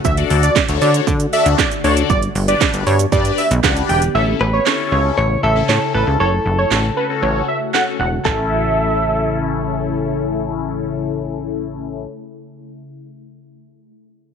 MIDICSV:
0, 0, Header, 1, 7, 480
1, 0, Start_track
1, 0, Tempo, 512821
1, 44, Time_signature, 4, 2, 24, 8
1, 13423, End_track
2, 0, Start_track
2, 0, Title_t, "Analog synth lead"
2, 0, Program_c, 0, 81
2, 45, Note_on_c, 0, 76, 97
2, 129, Note_off_c, 0, 76, 0
2, 404, Note_on_c, 0, 74, 84
2, 572, Note_off_c, 0, 74, 0
2, 764, Note_on_c, 0, 74, 85
2, 848, Note_off_c, 0, 74, 0
2, 1244, Note_on_c, 0, 76, 89
2, 1412, Note_off_c, 0, 76, 0
2, 1484, Note_on_c, 0, 74, 79
2, 1568, Note_off_c, 0, 74, 0
2, 1723, Note_on_c, 0, 73, 89
2, 1808, Note_off_c, 0, 73, 0
2, 1963, Note_on_c, 0, 74, 115
2, 2047, Note_off_c, 0, 74, 0
2, 2322, Note_on_c, 0, 74, 74
2, 2491, Note_off_c, 0, 74, 0
2, 2682, Note_on_c, 0, 73, 76
2, 2767, Note_off_c, 0, 73, 0
2, 2923, Note_on_c, 0, 74, 91
2, 3092, Note_off_c, 0, 74, 0
2, 3163, Note_on_c, 0, 76, 85
2, 3248, Note_off_c, 0, 76, 0
2, 3404, Note_on_c, 0, 78, 86
2, 3488, Note_off_c, 0, 78, 0
2, 3644, Note_on_c, 0, 79, 86
2, 3728, Note_off_c, 0, 79, 0
2, 3883, Note_on_c, 0, 76, 102
2, 3967, Note_off_c, 0, 76, 0
2, 4243, Note_on_c, 0, 73, 76
2, 4412, Note_off_c, 0, 73, 0
2, 4604, Note_on_c, 0, 73, 69
2, 4688, Note_off_c, 0, 73, 0
2, 5084, Note_on_c, 0, 76, 82
2, 5252, Note_off_c, 0, 76, 0
2, 5324, Note_on_c, 0, 73, 77
2, 5408, Note_off_c, 0, 73, 0
2, 5563, Note_on_c, 0, 71, 78
2, 5648, Note_off_c, 0, 71, 0
2, 5803, Note_on_c, 0, 73, 95
2, 5887, Note_off_c, 0, 73, 0
2, 6163, Note_on_c, 0, 73, 79
2, 6331, Note_off_c, 0, 73, 0
2, 6523, Note_on_c, 0, 71, 74
2, 6607, Note_off_c, 0, 71, 0
2, 6763, Note_on_c, 0, 73, 74
2, 6932, Note_off_c, 0, 73, 0
2, 7004, Note_on_c, 0, 76, 78
2, 7088, Note_off_c, 0, 76, 0
2, 7243, Note_on_c, 0, 78, 90
2, 7327, Note_off_c, 0, 78, 0
2, 7484, Note_on_c, 0, 78, 83
2, 7568, Note_off_c, 0, 78, 0
2, 7723, Note_on_c, 0, 76, 99
2, 9126, Note_off_c, 0, 76, 0
2, 13423, End_track
3, 0, Start_track
3, 0, Title_t, "Clean electric guitar"
3, 0, Program_c, 1, 27
3, 4125, Note_on_c, 1, 71, 88
3, 4362, Note_off_c, 1, 71, 0
3, 4366, Note_on_c, 1, 73, 98
3, 4834, Note_off_c, 1, 73, 0
3, 4845, Note_on_c, 1, 73, 103
3, 5081, Note_off_c, 1, 73, 0
3, 5085, Note_on_c, 1, 69, 89
3, 5554, Note_off_c, 1, 69, 0
3, 5565, Note_on_c, 1, 69, 77
3, 5788, Note_off_c, 1, 69, 0
3, 5804, Note_on_c, 1, 69, 76
3, 7207, Note_off_c, 1, 69, 0
3, 7723, Note_on_c, 1, 69, 77
3, 11291, Note_off_c, 1, 69, 0
3, 13423, End_track
4, 0, Start_track
4, 0, Title_t, "Analog polysynth"
4, 0, Program_c, 2, 90
4, 161, Note_on_c, 2, 62, 86
4, 162, Note_on_c, 2, 66, 75
4, 164, Note_on_c, 2, 69, 79
4, 165, Note_on_c, 2, 74, 91
4, 432, Note_off_c, 2, 62, 0
4, 433, Note_off_c, 2, 66, 0
4, 434, Note_off_c, 2, 69, 0
4, 435, Note_off_c, 2, 74, 0
4, 641, Note_on_c, 2, 62, 82
4, 643, Note_on_c, 2, 66, 78
4, 645, Note_on_c, 2, 69, 75
4, 646, Note_on_c, 2, 73, 97
4, 980, Note_off_c, 2, 62, 0
4, 981, Note_off_c, 2, 66, 0
4, 982, Note_off_c, 2, 69, 0
4, 983, Note_off_c, 2, 73, 0
4, 1242, Note_on_c, 2, 62, 91
4, 1243, Note_on_c, 2, 66, 83
4, 1245, Note_on_c, 2, 69, 82
4, 1246, Note_on_c, 2, 74, 97
4, 1513, Note_off_c, 2, 62, 0
4, 1514, Note_off_c, 2, 66, 0
4, 1514, Note_off_c, 2, 69, 0
4, 1515, Note_off_c, 2, 74, 0
4, 1721, Note_on_c, 2, 62, 91
4, 1723, Note_on_c, 2, 66, 78
4, 1725, Note_on_c, 2, 69, 79
4, 1726, Note_on_c, 2, 74, 99
4, 1963, Note_off_c, 2, 62, 0
4, 1964, Note_off_c, 2, 66, 0
4, 1964, Note_off_c, 2, 69, 0
4, 1965, Note_off_c, 2, 74, 0
4, 2321, Note_on_c, 2, 62, 80
4, 2323, Note_on_c, 2, 67, 72
4, 2325, Note_on_c, 2, 71, 71
4, 2326, Note_on_c, 2, 74, 89
4, 2660, Note_off_c, 2, 62, 0
4, 2661, Note_off_c, 2, 67, 0
4, 2662, Note_off_c, 2, 71, 0
4, 2663, Note_off_c, 2, 74, 0
4, 2921, Note_on_c, 2, 62, 84
4, 2923, Note_on_c, 2, 67, 76
4, 2924, Note_on_c, 2, 71, 80
4, 2926, Note_on_c, 2, 74, 90
4, 3193, Note_off_c, 2, 62, 0
4, 3193, Note_off_c, 2, 67, 0
4, 3194, Note_off_c, 2, 71, 0
4, 3195, Note_off_c, 2, 74, 0
4, 3401, Note_on_c, 2, 62, 92
4, 3402, Note_on_c, 2, 67, 80
4, 3404, Note_on_c, 2, 71, 83
4, 3406, Note_on_c, 2, 74, 99
4, 3740, Note_off_c, 2, 62, 0
4, 3741, Note_off_c, 2, 67, 0
4, 3742, Note_off_c, 2, 71, 0
4, 3742, Note_off_c, 2, 74, 0
4, 3882, Note_on_c, 2, 61, 78
4, 3884, Note_on_c, 2, 64, 68
4, 3886, Note_on_c, 2, 69, 83
4, 4153, Note_off_c, 2, 61, 0
4, 4154, Note_off_c, 2, 64, 0
4, 4155, Note_off_c, 2, 69, 0
4, 4361, Note_on_c, 2, 61, 75
4, 4364, Note_on_c, 2, 64, 65
4, 4366, Note_on_c, 2, 69, 82
4, 4835, Note_off_c, 2, 61, 0
4, 4836, Note_off_c, 2, 64, 0
4, 4838, Note_off_c, 2, 69, 0
4, 5200, Note_on_c, 2, 61, 70
4, 5203, Note_on_c, 2, 64, 66
4, 5205, Note_on_c, 2, 69, 78
4, 5742, Note_off_c, 2, 61, 0
4, 5743, Note_off_c, 2, 64, 0
4, 5745, Note_off_c, 2, 69, 0
4, 6281, Note_on_c, 2, 61, 74
4, 6284, Note_on_c, 2, 66, 66
4, 6286, Note_on_c, 2, 69, 81
4, 6412, Note_off_c, 2, 61, 0
4, 6415, Note_off_c, 2, 66, 0
4, 6417, Note_off_c, 2, 69, 0
4, 6521, Note_on_c, 2, 61, 69
4, 6524, Note_on_c, 2, 66, 64
4, 6526, Note_on_c, 2, 69, 78
4, 6590, Note_off_c, 2, 61, 0
4, 6591, Note_off_c, 2, 66, 0
4, 6592, Note_off_c, 2, 69, 0
4, 6641, Note_on_c, 2, 61, 76
4, 6644, Note_on_c, 2, 66, 67
4, 6646, Note_on_c, 2, 69, 85
4, 6980, Note_off_c, 2, 61, 0
4, 6981, Note_off_c, 2, 66, 0
4, 6982, Note_off_c, 2, 69, 0
4, 7241, Note_on_c, 2, 61, 84
4, 7243, Note_on_c, 2, 66, 73
4, 7246, Note_on_c, 2, 69, 86
4, 7513, Note_off_c, 2, 61, 0
4, 7514, Note_off_c, 2, 66, 0
4, 7515, Note_off_c, 2, 69, 0
4, 7723, Note_on_c, 2, 61, 83
4, 7723, Note_on_c, 2, 64, 71
4, 7724, Note_on_c, 2, 69, 90
4, 11292, Note_off_c, 2, 61, 0
4, 11292, Note_off_c, 2, 64, 0
4, 11292, Note_off_c, 2, 69, 0
4, 13423, End_track
5, 0, Start_track
5, 0, Title_t, "Ambient pad"
5, 0, Program_c, 3, 92
5, 0, Note_on_c, 3, 57, 78
5, 0, Note_on_c, 3, 66, 91
5, 46, Note_on_c, 3, 50, 84
5, 1926, Note_off_c, 3, 57, 0
5, 1926, Note_off_c, 3, 66, 0
5, 1964, Note_on_c, 3, 59, 72
5, 1964, Note_on_c, 3, 67, 91
5, 3848, Note_off_c, 3, 50, 0
5, 3865, Note_off_c, 3, 59, 0
5, 3865, Note_off_c, 3, 67, 0
5, 3884, Note_on_c, 3, 49, 78
5, 3884, Note_on_c, 3, 57, 70
5, 3884, Note_on_c, 3, 64, 82
5, 5785, Note_off_c, 3, 49, 0
5, 5785, Note_off_c, 3, 57, 0
5, 5785, Note_off_c, 3, 64, 0
5, 5802, Note_on_c, 3, 49, 78
5, 5802, Note_on_c, 3, 66, 85
5, 5803, Note_on_c, 3, 57, 72
5, 7704, Note_off_c, 3, 49, 0
5, 7704, Note_off_c, 3, 57, 0
5, 7704, Note_off_c, 3, 66, 0
5, 7723, Note_on_c, 3, 49, 71
5, 7723, Note_on_c, 3, 57, 70
5, 7723, Note_on_c, 3, 64, 82
5, 11291, Note_off_c, 3, 49, 0
5, 11291, Note_off_c, 3, 57, 0
5, 11291, Note_off_c, 3, 64, 0
5, 13423, End_track
6, 0, Start_track
6, 0, Title_t, "Analog synth bass"
6, 0, Program_c, 4, 38
6, 44, Note_on_c, 4, 38, 109
6, 224, Note_off_c, 4, 38, 0
6, 285, Note_on_c, 4, 38, 104
6, 465, Note_off_c, 4, 38, 0
6, 645, Note_on_c, 4, 38, 92
6, 735, Note_off_c, 4, 38, 0
6, 765, Note_on_c, 4, 50, 99
6, 945, Note_off_c, 4, 50, 0
6, 1003, Note_on_c, 4, 50, 113
6, 1183, Note_off_c, 4, 50, 0
6, 1364, Note_on_c, 4, 38, 93
6, 1454, Note_off_c, 4, 38, 0
6, 1724, Note_on_c, 4, 38, 98
6, 1904, Note_off_c, 4, 38, 0
6, 1964, Note_on_c, 4, 31, 109
6, 2144, Note_off_c, 4, 31, 0
6, 2204, Note_on_c, 4, 31, 94
6, 2384, Note_off_c, 4, 31, 0
6, 2564, Note_on_c, 4, 31, 94
6, 2654, Note_off_c, 4, 31, 0
6, 2684, Note_on_c, 4, 43, 101
6, 2864, Note_off_c, 4, 43, 0
6, 2922, Note_on_c, 4, 43, 110
6, 3103, Note_off_c, 4, 43, 0
6, 3284, Note_on_c, 4, 35, 107
6, 3374, Note_off_c, 4, 35, 0
6, 3644, Note_on_c, 4, 28, 94
6, 3824, Note_off_c, 4, 28, 0
6, 3884, Note_on_c, 4, 33, 104
6, 4064, Note_off_c, 4, 33, 0
6, 4124, Note_on_c, 4, 33, 102
6, 4304, Note_off_c, 4, 33, 0
6, 4604, Note_on_c, 4, 37, 88
6, 4784, Note_off_c, 4, 37, 0
6, 4844, Note_on_c, 4, 33, 94
6, 5024, Note_off_c, 4, 33, 0
6, 5084, Note_on_c, 4, 33, 92
6, 5264, Note_off_c, 4, 33, 0
6, 5323, Note_on_c, 4, 45, 107
6, 5414, Note_off_c, 4, 45, 0
6, 5564, Note_on_c, 4, 33, 88
6, 5654, Note_off_c, 4, 33, 0
6, 5683, Note_on_c, 4, 37, 89
6, 5774, Note_off_c, 4, 37, 0
6, 5804, Note_on_c, 4, 30, 101
6, 5984, Note_off_c, 4, 30, 0
6, 6044, Note_on_c, 4, 30, 97
6, 6224, Note_off_c, 4, 30, 0
6, 6284, Note_on_c, 4, 33, 98
6, 6464, Note_off_c, 4, 33, 0
6, 6763, Note_on_c, 4, 33, 94
6, 6943, Note_off_c, 4, 33, 0
6, 7484, Note_on_c, 4, 28, 89
6, 7664, Note_off_c, 4, 28, 0
6, 7724, Note_on_c, 4, 33, 93
6, 11292, Note_off_c, 4, 33, 0
6, 13423, End_track
7, 0, Start_track
7, 0, Title_t, "Drums"
7, 44, Note_on_c, 9, 36, 114
7, 44, Note_on_c, 9, 82, 81
7, 138, Note_off_c, 9, 36, 0
7, 138, Note_off_c, 9, 82, 0
7, 163, Note_on_c, 9, 42, 54
7, 163, Note_on_c, 9, 82, 54
7, 256, Note_off_c, 9, 42, 0
7, 256, Note_off_c, 9, 82, 0
7, 285, Note_on_c, 9, 46, 85
7, 285, Note_on_c, 9, 82, 61
7, 378, Note_off_c, 9, 46, 0
7, 378, Note_off_c, 9, 82, 0
7, 403, Note_on_c, 9, 42, 80
7, 403, Note_on_c, 9, 82, 79
7, 497, Note_off_c, 9, 42, 0
7, 497, Note_off_c, 9, 82, 0
7, 521, Note_on_c, 9, 82, 87
7, 522, Note_on_c, 9, 36, 127
7, 523, Note_on_c, 9, 39, 127
7, 527, Note_on_c, 9, 38, 103
7, 615, Note_off_c, 9, 82, 0
7, 616, Note_off_c, 9, 36, 0
7, 617, Note_off_c, 9, 39, 0
7, 621, Note_off_c, 9, 38, 0
7, 641, Note_on_c, 9, 42, 64
7, 641, Note_on_c, 9, 82, 58
7, 735, Note_off_c, 9, 42, 0
7, 735, Note_off_c, 9, 82, 0
7, 763, Note_on_c, 9, 46, 72
7, 763, Note_on_c, 9, 82, 53
7, 856, Note_off_c, 9, 46, 0
7, 856, Note_off_c, 9, 82, 0
7, 882, Note_on_c, 9, 42, 97
7, 882, Note_on_c, 9, 82, 89
7, 976, Note_off_c, 9, 42, 0
7, 976, Note_off_c, 9, 82, 0
7, 1003, Note_on_c, 9, 36, 120
7, 1004, Note_on_c, 9, 82, 75
7, 1096, Note_off_c, 9, 36, 0
7, 1098, Note_off_c, 9, 82, 0
7, 1121, Note_on_c, 9, 42, 60
7, 1121, Note_on_c, 9, 82, 62
7, 1215, Note_off_c, 9, 42, 0
7, 1215, Note_off_c, 9, 82, 0
7, 1244, Note_on_c, 9, 46, 77
7, 1244, Note_on_c, 9, 82, 57
7, 1337, Note_off_c, 9, 46, 0
7, 1337, Note_off_c, 9, 82, 0
7, 1366, Note_on_c, 9, 42, 80
7, 1366, Note_on_c, 9, 82, 84
7, 1459, Note_off_c, 9, 42, 0
7, 1459, Note_off_c, 9, 82, 0
7, 1483, Note_on_c, 9, 36, 120
7, 1485, Note_on_c, 9, 82, 87
7, 1486, Note_on_c, 9, 39, 120
7, 1490, Note_on_c, 9, 38, 95
7, 1577, Note_off_c, 9, 36, 0
7, 1579, Note_off_c, 9, 82, 0
7, 1580, Note_off_c, 9, 39, 0
7, 1584, Note_off_c, 9, 38, 0
7, 1605, Note_on_c, 9, 42, 60
7, 1605, Note_on_c, 9, 82, 58
7, 1699, Note_off_c, 9, 42, 0
7, 1699, Note_off_c, 9, 82, 0
7, 1725, Note_on_c, 9, 46, 81
7, 1725, Note_on_c, 9, 82, 58
7, 1819, Note_off_c, 9, 46, 0
7, 1819, Note_off_c, 9, 82, 0
7, 1842, Note_on_c, 9, 42, 76
7, 1842, Note_on_c, 9, 82, 75
7, 1936, Note_off_c, 9, 42, 0
7, 1936, Note_off_c, 9, 82, 0
7, 1964, Note_on_c, 9, 36, 116
7, 1964, Note_on_c, 9, 82, 76
7, 2057, Note_off_c, 9, 36, 0
7, 2057, Note_off_c, 9, 82, 0
7, 2083, Note_on_c, 9, 42, 54
7, 2083, Note_on_c, 9, 82, 54
7, 2176, Note_off_c, 9, 42, 0
7, 2176, Note_off_c, 9, 82, 0
7, 2204, Note_on_c, 9, 46, 82
7, 2204, Note_on_c, 9, 82, 61
7, 2298, Note_off_c, 9, 46, 0
7, 2298, Note_off_c, 9, 82, 0
7, 2323, Note_on_c, 9, 42, 80
7, 2323, Note_on_c, 9, 82, 77
7, 2417, Note_off_c, 9, 42, 0
7, 2417, Note_off_c, 9, 82, 0
7, 2442, Note_on_c, 9, 36, 121
7, 2442, Note_on_c, 9, 82, 84
7, 2444, Note_on_c, 9, 39, 127
7, 2448, Note_on_c, 9, 38, 107
7, 2535, Note_off_c, 9, 36, 0
7, 2535, Note_off_c, 9, 82, 0
7, 2537, Note_off_c, 9, 39, 0
7, 2541, Note_off_c, 9, 38, 0
7, 2561, Note_on_c, 9, 42, 62
7, 2561, Note_on_c, 9, 82, 60
7, 2655, Note_off_c, 9, 42, 0
7, 2655, Note_off_c, 9, 82, 0
7, 2683, Note_on_c, 9, 46, 71
7, 2683, Note_on_c, 9, 82, 53
7, 2776, Note_off_c, 9, 46, 0
7, 2776, Note_off_c, 9, 82, 0
7, 2802, Note_on_c, 9, 42, 95
7, 2802, Note_on_c, 9, 82, 99
7, 2896, Note_off_c, 9, 42, 0
7, 2896, Note_off_c, 9, 82, 0
7, 2922, Note_on_c, 9, 36, 119
7, 2923, Note_on_c, 9, 82, 71
7, 3016, Note_off_c, 9, 36, 0
7, 3017, Note_off_c, 9, 82, 0
7, 3041, Note_on_c, 9, 42, 60
7, 3041, Note_on_c, 9, 82, 59
7, 3134, Note_off_c, 9, 42, 0
7, 3134, Note_off_c, 9, 82, 0
7, 3163, Note_on_c, 9, 46, 79
7, 3163, Note_on_c, 9, 82, 56
7, 3257, Note_off_c, 9, 46, 0
7, 3257, Note_off_c, 9, 82, 0
7, 3286, Note_on_c, 9, 42, 80
7, 3286, Note_on_c, 9, 82, 83
7, 3379, Note_off_c, 9, 42, 0
7, 3379, Note_off_c, 9, 82, 0
7, 3403, Note_on_c, 9, 36, 115
7, 3405, Note_on_c, 9, 82, 84
7, 3406, Note_on_c, 9, 39, 120
7, 3410, Note_on_c, 9, 38, 98
7, 3497, Note_off_c, 9, 36, 0
7, 3498, Note_off_c, 9, 82, 0
7, 3499, Note_off_c, 9, 39, 0
7, 3503, Note_off_c, 9, 38, 0
7, 3524, Note_on_c, 9, 42, 58
7, 3524, Note_on_c, 9, 82, 58
7, 3618, Note_off_c, 9, 42, 0
7, 3618, Note_off_c, 9, 82, 0
7, 3645, Note_on_c, 9, 46, 78
7, 3645, Note_on_c, 9, 82, 60
7, 3738, Note_off_c, 9, 46, 0
7, 3738, Note_off_c, 9, 82, 0
7, 3761, Note_on_c, 9, 42, 77
7, 3761, Note_on_c, 9, 82, 79
7, 3855, Note_off_c, 9, 42, 0
7, 3855, Note_off_c, 9, 82, 0
7, 4363, Note_on_c, 9, 39, 118
7, 4367, Note_on_c, 9, 38, 98
7, 4456, Note_off_c, 9, 39, 0
7, 4460, Note_off_c, 9, 38, 0
7, 5326, Note_on_c, 9, 39, 111
7, 5330, Note_on_c, 9, 38, 90
7, 5420, Note_off_c, 9, 39, 0
7, 5423, Note_off_c, 9, 38, 0
7, 6283, Note_on_c, 9, 39, 118
7, 6287, Note_on_c, 9, 38, 93
7, 6377, Note_off_c, 9, 39, 0
7, 6381, Note_off_c, 9, 38, 0
7, 7246, Note_on_c, 9, 39, 105
7, 7250, Note_on_c, 9, 38, 80
7, 7339, Note_off_c, 9, 39, 0
7, 7343, Note_off_c, 9, 38, 0
7, 7724, Note_on_c, 9, 36, 91
7, 7724, Note_on_c, 9, 39, 79
7, 7817, Note_off_c, 9, 36, 0
7, 7818, Note_off_c, 9, 39, 0
7, 13423, End_track
0, 0, End_of_file